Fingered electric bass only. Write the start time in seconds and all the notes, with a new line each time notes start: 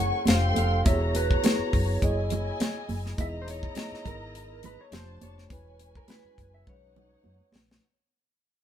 Already playing: F#1
0.28 F1
0.57 F1
0.86 E1
1.59 muted fingered electric bass stroke
1.73 F#1
2.02 F#1
2.89 F#1
3.18 E1
3.92 muted fingered electric bass stroke
4.05 G#1
4.92 F1
5.22 F1
5.50 E1
6.25 muted fingered electric bass stroke
6.38 F#1
6.67 B1
7.25 F#2
7.54 A#1